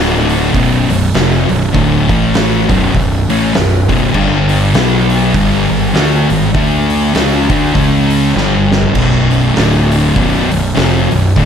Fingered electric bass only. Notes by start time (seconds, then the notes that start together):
Already playing: D1
0.54 B0
0.89 B0
1.14 F1
1.50 B0
1.75 D1
2.09 A1
2.69 B0
2.94 B0
3.29 A1
3.56 B0
3.90 B0
4.14 G1
4.75 B1
5.34 G1
5.70 G1
5.95 D2
6.30 G1
6.55 D2
7.15 C#2
7.50 D2
7.75 C#2
8.36 G1
8.95 B0
9.57 D1
10.16 B0
10.52 B0
10.77 F1
11.12 B0
11.36 D1